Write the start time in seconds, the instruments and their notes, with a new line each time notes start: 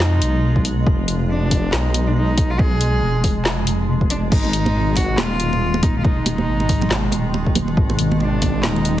Already playing: detuned saw bass F2, ambient pad B2 G#3
0.00 cello D#4, snare, clap
0.22 detuned saw bass B1, closed hi-hat
0.56 kick
0.65 closed hi-hat
0.87 detuned saw bass F1, kick
1.08 closed hi-hat
1.30 cello D4
1.51 kick, open hi-hat
1.73 detuned saw bass B1, cello D#4, snare, clap
1.94 closed hi-hat
2.07 cello D4
2.16 cello D#4
2.38 kick, closed hi-hat
2.50 cello F4
2.59 cello G#4, kick
2.81 closed hi-hat
3.02 detuned saw bass F1
3.24 kick, open hi-hat
3.45 snare, clap
3.67 detuned saw bass F1, closed hi-hat
4.01 kick
4.10 detuned saw bass F1, cello D4, closed hi-hat
4.32 detuned saw bass G#1, ambient pad D#3, cello D#4, kick, crash
4.45 muted conga
4.53 closed hi-hat
4.66 muted conga, high conga
4.96 cello F#4, kick, open hi-hat, muted conga
5.18 detuned saw bass D#1, cello F4, snare, clap, muted conga, high conga
5.40 closed hi-hat
5.53 muted conga
5.74 muted conga
5.83 cello D#4, kick, closed hi-hat, high conga
5.98 cello F4
6.04 cello D#4, kick, muted conga
6.26 closed hi-hat, muted conga
6.38 high conga
6.48 detuned saw bass G#1
6.60 muted conga
6.69 kick, open hi-hat
6.82 muted conga, low conga
6.90 snare, clap, high conga
7.12 detuned saw bass D#1, closed hi-hat, muted conga
7.34 muted conga
7.47 kick
7.55 closed hi-hat, high conga, low conga
7.68 muted conga
7.77 detuned saw bass G#1, kick
7.90 muted conga
7.99 closed hi-hat
8.12 high conga
8.20 cello D4, muted conga
8.42 kick, open hi-hat, muted conga
8.63 detuned saw bass D#1, cello D#4, snare, clap, high conga
8.76 muted conga
8.85 closed hi-hat